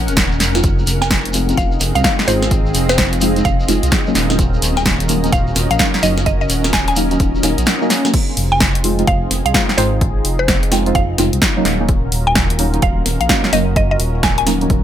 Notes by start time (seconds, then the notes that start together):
Already playing: C#4 A#4 D#5 F#5
0.08 D#1, closed hi-hat, shekere
0.17 kick, snare, closed hi-hat, shekere
0.32 shekere
0.40 F1, snare, open hi-hat, shekere
0.55 G#3 C4 D#4 F4, snare, shekere
0.63 C4 D#4 F4 G#4, kick, closed hi-hat, shekere
0.75 G#4, shekere
0.87 F1, open hi-hat, shekere
1.02 G#5, snare, shekere
1.06 F5, shekere
1.11 kick, snare, closed hi-hat
1.25 D#5, closed hi-hat, shekere
1.33 G#3 C4 D#4 F4, open hi-hat, shekere
1.49 G#3 C4 D#4 F4, closed hi-hat, shekere
1.57 F1 F5, kick, closed hi-hat, shekere
1.72 shekere
1.80 F1, snare, open hi-hat, shekere
1.95 C2 F5, closed hi-hat, shekere
2.04 G#3 C4 D#4 F4 F5, kick, snare, closed hi-hat, shekere
2.19 snare, shekere
2.28 G#1 G#3 C4 D#4 F4 C5, open hi-hat, shekere
2.42 snare, shekere
2.51 kick, closed hi-hat, shekere
2.66 shekere
2.74 F1, open hi-hat, shekere
2.89 C5, snare, shekere
2.98 kick, snare, closed hi-hat, shekere
3.13 closed hi-hat, shekere
3.21 G#3 C4 D#4 F4, open hi-hat, shekere
3.36 G#3 C4 D#4 F4, closed hi-hat, shekere
3.45 F1 F5, kick, closed hi-hat, shekere
3.60 shekere
3.68 F1 G#3 C4 D#4 F4, snare, open hi-hat, shekere
3.83 C2, closed hi-hat, shekere
3.91 kick, snare, closed hi-hat, shekere
4.06 F#3 A#3 C#4 D#4, shekere
4.15 D#1 C#4 F#4 A#4, snare, open hi-hat, shekere
4.30 F#3 A#3 C#4 D#4, snare, shekere
4.39 kick, closed hi-hat, shekere
4.50 A#4
4.54 shekere
4.62 D#1, open hi-hat, shekere
4.77 G#5, snare, shekere
4.85 kick, snare, closed hi-hat, shekere
5.00 closed hi-hat, shekere
5.09 F#3 A#3 C#4 D#4, open hi-hat, shekere
5.24 F#3 A#3 C#4 D#4, closed hi-hat, shekere
5.33 D#1 F5, kick, closed hi-hat, shekere
5.47 shekere
5.56 D#1, snare, open hi-hat, shekere
5.71 A#1 F5, closed hi-hat, shekere
5.79 F#3 A#3 C#4 D#4 F5, kick, snare, closed hi-hat, shekere
5.94 snare, shekere
6.03 F#1 F#3 A#3 C#4 D#4 D#5, open hi-hat, shekere
6.17 snare, shekere
6.26 D#5, kick, closed hi-hat, shekere
6.41 D#5, shekere
6.49 D#1, open hi-hat, shekere
6.64 snare, shekere
6.73 G#5, kick, snare, closed hi-hat, shekere
6.88 G#5, closed hi-hat, shekere
6.96 F#3 A#3 C#4 D#4, open hi-hat, shekere
7.11 F#3 A#3 C#4 D#4, closed hi-hat, shekere
7.20 D#1, kick, closed hi-hat, shekere
7.35 shekere
7.43 D#1 F#3 A#3 C#4 D#4, snare, open hi-hat, shekere
7.58 A#1, closed hi-hat, shekere
7.66 snare, closed hi-hat, shekere
7.82 F#3 A#3 C#4 D#4, shekere
7.90 snare, open hi-hat, shekere
8.05 F#3 A#3 C#4 D#4, snare, shekere
8.14 C4 D#4 F4 G#4, kick, closed hi-hat, crash
8.29 G#4
8.37 F1, open hi-hat
8.52 G#5
8.57 F5, kick, snare, closed hi-hat
8.75 closed hi-hat
8.84 G#3 C4 D#4 F4, open hi-hat
8.99 G#3 C4 D#4 F4, closed hi-hat
9.07 F1 F5, kick, closed hi-hat
9.31 F1, snare, open hi-hat
9.46 C2 F5, closed hi-hat
9.54 G#3 C4 D#4 F4 F5, kick, snare, closed hi-hat
9.69 snare
9.78 G#1 G#3 C4 D#4 F4 C5, snare, open hi-hat
10.01 kick, closed hi-hat
10.25 F1, open hi-hat
10.39 C5
10.48 kick, snare, closed hi-hat
10.63 closed hi-hat
10.72 G#3 C4 D#4 F4, snare, open hi-hat
10.86 G#3 C4 D#4 F4, closed hi-hat
10.95 F1 F5, kick, closed hi-hat
11.18 F1 G#3 C4 D#4 F4, snare, open hi-hat
11.33 C2, closed hi-hat
11.42 kick, snare, closed hi-hat
11.57 F#3 A#3 C#4 D#4
11.65 D#1 C#4 F4 F#4 A#4, snare, open hi-hat
11.80 F#3 A#3 C#4 D#4
11.89 kick, closed hi-hat
11.97 A#4
12.12 D#1, open hi-hat
12.27 G#5
12.35 kick, snare, closed hi-hat
12.50 closed hi-hat
12.59 F#3 A#3 C#4 D#4, open hi-hat
12.74 F#3 A#3 C#4 D#4, closed hi-hat
12.82 D#1 F5, kick, closed hi-hat
13.06 D#1, snare, open hi-hat
13.21 A#1 F5, closed hi-hat
13.29 F#3 A#3 C#4 D#4 F5, kick, snare, closed hi-hat
13.44 snare
13.53 F#1 F#3 A#3 C#4 D#4 D#5, snare, open hi-hat
13.76 D#5, kick, closed hi-hat
13.91 D#5
14.00 D#1, open hi-hat
14.23 G#5, kick, snare, closed hi-hat
14.38 G#5, closed hi-hat
14.47 F#3 A#3 C#4 D#4, snare, open hi-hat
14.61 F#3 A#3 C#4 D#4, closed hi-hat
14.70 D#1, kick, closed hi-hat